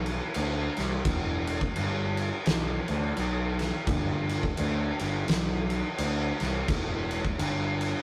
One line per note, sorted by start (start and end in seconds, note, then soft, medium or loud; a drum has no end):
0.00 0.18 B1 medium
0.06 crash medium
0.34 0.67 D2 medium
0.34 crash medium
0.77 0.99 C2 medium
0.77 snare soft
0.77 crash medium
1.05 1.58 E1 medium
1.05 kick loud
1.05 crash medium
1.47 crash medium
1.61 kick medium
1.76 2.29 G1 medium
1.76 crash medium
2.17 crash medium
2.46 2.78 B1 loud
2.46 snare loud
2.46 crash medium
2.88 3.10 D2 medium
2.88 crash medium
3.17 3.70 B1 medium
3.17 crash medium
3.59 snare soft
3.59 crash medium
3.87 4.40 G1 loud
3.87 kick loud
3.87 crash medium
4.29 crash medium
4.43 kick medium
4.57 4.89 D2 medium
4.57 crash medium
4.99 5.22 G1 medium
4.99 crash medium
5.28 5.81 B1 medium
5.28 snare loud
5.28 crash medium
5.70 crash medium
5.98 6.30 D2 medium
5.98 crash medium
6.40 6.62 C2 medium
6.40 snare soft
6.40 crash medium
6.68 7.21 E1 medium
6.68 kick loud
6.68 crash medium
7.11 crash medium
7.25 kick medium
7.39 7.92 G1 medium
7.39 crash medium
7.81 crash medium